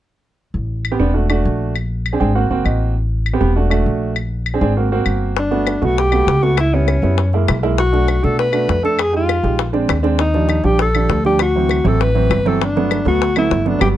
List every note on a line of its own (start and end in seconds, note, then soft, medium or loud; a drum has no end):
0.54 0.96 A1 medium
0.85 claves medium
0.91 0.97 B3 medium
0.91 0.97 C4 medium
0.91 0.97 G4 medium
0.99 1.42 E1 medium
0.99 1.10 B3 medium
0.99 1.10 C4 medium
0.99 1.10 D4 medium
1.14 1.25 A3 medium
1.14 1.25 D4 medium
1.14 1.25 F#4 medium
1.29 1.72 A3 medium
1.29 1.72 D4 medium
1.29 1.72 F#4 medium
1.29 claves medium
1.45 2.15 A#1 medium
1.76 claves medium
2.06 claves medium
2.13 2.18 C4 medium
2.13 2.18 D4 medium
2.13 2.18 G#4 medium
2.20 2.48 G#1 medium
2.20 2.31 C4 medium
2.20 2.31 D4 medium
2.20 2.31 G#4 medium
2.20 2.34 G5 medium
2.35 2.46 A#3 medium
2.35 2.46 C4 medium
2.35 2.46 F#4 medium
2.35 2.63 F#5 medium
2.50 2.64 F#1 medium
2.50 2.93 A#3 medium
2.50 2.93 C4 medium
2.50 2.93 F#4 medium
2.65 3.35 A1 medium
2.65 2.93 D#5 medium
2.65 claves medium
3.26 claves medium
3.33 3.39 B3 medium
3.33 3.39 C4 medium
3.33 3.39 G4 medium
3.40 3.83 E1 medium
3.40 3.51 B3 medium
3.40 3.51 C4 medium
3.40 3.51 G4 medium
3.56 3.67 A3 medium
3.56 3.67 D4 medium
3.56 3.67 F#4 medium
3.70 4.13 A3 medium
3.70 4.13 D4 medium
3.70 4.13 F#4 medium
3.70 claves medium
3.86 4.56 A#1 medium
4.16 claves medium
4.46 claves medium
4.54 4.59 C4 medium
4.54 4.59 D4 medium
4.54 4.59 G#4 medium
4.61 5.03 G#1 medium
4.61 4.72 C4 medium
4.61 4.72 D4 medium
4.61 4.72 G#4 loud
4.77 4.87 A#3 medium
4.77 4.87 C4 medium
4.77 4.87 F#4 medium
4.92 5.34 A#3 medium
4.92 5.34 C4 medium
4.92 5.34 F#4 medium
5.06 5.76 G1 medium
5.06 claves medium
5.37 5.86 D4 medium
5.37 high bongo medium
5.51 5.73 A3 medium
5.51 5.73 B3 medium
5.51 5.73 F#4 medium
5.51 high bongo soft
5.67 high bongo medium
5.67 claves medium
5.82 6.24 B1 medium
5.82 6.03 A3 medium
5.82 6.03 B3 medium
5.82 6.03 F#4 medium
5.82 6.01 F#4 medium
5.82 high bongo soft
5.98 6.45 G4 loud
5.98 high bongo medium
6.12 6.33 A3 medium
6.12 6.33 B3 medium
6.12 6.33 F#4 medium
6.12 claves medium
6.27 6.97 C#2 medium
6.27 high bongo medium
6.27 low bongo medium
6.43 6.58 A3 medium
6.43 6.58 B3 medium
6.43 6.58 F#4 medium
6.43 high bongo soft
6.57 6.76 E4 medium
6.57 high bongo medium
6.57 claves medium
6.74 6.94 G3 medium
6.74 6.94 B3 medium
6.74 7.34 C#4 medium
6.74 6.94 E4 medium
6.88 high bongo medium
6.88 claves medium
7.02 7.44 F#2 medium
7.02 7.18 G3 medium
7.02 7.18 B3 medium
7.02 7.18 E4 medium
7.02 high bongo soft
7.18 high bongo medium
7.33 7.54 G#3 medium
7.33 7.54 A#3 medium
7.33 7.55 E4 medium
7.33 high bongo soft
7.48 8.18 B1 medium
7.48 high bongo medium
7.48 low bongo medium
7.48 claves medium
7.63 7.78 G#3 medium
7.63 7.78 A#3 medium
7.63 7.78 E4 loud
7.63 high bongo soft
7.78 8.26 F#4 medium
7.78 high bongo medium
7.93 8.14 A3 medium
7.93 8.14 D4 medium
7.93 8.14 F#4 medium
7.93 high bongo soft
8.08 high bongo medium
8.08 claves medium
8.23 8.66 B2 medium
8.23 8.44 A3 medium
8.23 8.44 D4 medium
8.23 8.44 F#4 medium
8.23 8.39 A4 loud
8.23 high bongo soft
8.39 8.81 B4 loud
8.39 high bongo medium
8.52 8.74 A3 medium
8.52 8.74 D4 medium
8.52 8.74 F#4 medium
8.52 claves medium
8.69 9.38 F2 medium
8.69 high bongo medium
8.69 low bongo medium
8.83 8.99 A3 medium
8.83 8.99 D4 medium
8.83 8.98 A4 medium
8.83 9.02 A4 medium
8.83 high bongo soft
8.99 9.15 G#4 loud
8.99 high bongo medium
8.99 claves medium
9.13 9.34 G#3 medium
9.13 9.34 D#4 medium
9.13 9.71 F4 medium
9.13 9.34 G4 medium
9.29 high bongo medium
9.29 claves medium
9.43 9.86 A#1 medium
9.43 9.59 G#3 medium
9.43 9.59 D#4 medium
9.43 9.59 G4 medium
9.43 high bongo soft
9.59 high bongo medium
9.73 9.95 G#3 medium
9.73 9.95 C4 medium
9.73 9.95 D4 medium
9.73 high bongo soft
9.88 10.59 D#2 medium
9.88 high bongo medium
9.88 low bongo medium
9.88 claves medium
10.03 10.19 G#3 medium
10.03 10.19 C4 medium
10.03 10.19 D4 medium
10.03 high bongo soft
10.19 10.66 D#4 medium
10.19 high bongo medium
10.34 10.56 F3 medium
10.34 10.55 G3 medium
10.34 10.55 D4 medium
10.34 high bongo soft
10.49 high bongo medium
10.49 claves medium
10.64 11.06 A#1 medium
10.64 10.85 F3 medium
10.64 10.85 G3 medium
10.64 10.85 D4 medium
10.64 10.80 G4 medium
10.64 high bongo soft
10.79 11.23 A4 loud
10.79 high bongo medium
10.95 11.16 F3 medium
10.95 11.16 G3 medium
10.95 11.16 D4 medium
10.95 claves medium
11.09 11.79 D2 medium
11.09 high bongo medium
11.09 low bongo medium
11.25 11.40 F3 medium
11.25 11.40 G3 medium
11.25 11.40 D4 medium
11.25 11.39 G4 medium
11.25 high bongo soft
11.39 11.89 F#4 medium
11.39 high bongo medium
11.39 claves medium
11.55 11.76 E3 medium
11.55 11.76 F#3 medium
11.55 11.76 C4 medium
11.69 high bongo medium
11.69 claves medium
11.84 12.27 A1 medium
11.84 12.06 E3 medium
11.84 12.06 F#3 medium
11.84 12.06 C4 medium
11.84 12.04 A4 loud
11.84 high bongo soft
12.01 12.49 B4 loud
12.01 high bongo medium
12.15 12.36 E3 medium
12.15 12.36 F#3 medium
12.15 12.36 C4 medium
12.15 high bongo soft
12.30 13.00 G1 medium
12.30 high bongo medium
12.30 low bongo medium
12.30 claves medium
12.45 12.61 E3 medium
12.45 12.60 F#3 medium
12.45 12.61 C4 medium
12.45 12.62 A4 medium
12.45 high bongo soft
12.62 13.05 D4 medium
12.62 high bongo medium
12.76 12.97 F#3 medium
12.76 12.97 A3 medium
12.76 12.97 B3 medium
12.76 high bongo soft
12.91 high bongo medium
12.91 claves medium
13.05 13.47 D2 medium
13.05 13.27 F#3 medium
13.05 13.27 A3 medium
13.05 13.27 B3 medium
13.05 13.35 F#4 loud
13.05 high bongo soft
13.22 high bongo medium
13.36 13.57 F#3 medium
13.36 13.57 A3 medium
13.36 13.57 B3 medium
13.36 13.69 E4 medium
13.36 claves medium
13.51 13.79 G1 medium
13.51 high bongo medium
13.51 low bongo medium
13.66 13.79 F#3 medium
13.66 13.81 A3 medium
13.66 13.79 B3 medium
13.66 13.81 D4 medium
13.66 high bongo soft
13.80 13.92 G1 medium
13.80 13.90 F#3 medium
13.80 13.90 G3 medium
13.80 13.90 B3 medium
13.80 13.88 G4 medium
13.80 high bongo medium
13.80 claves medium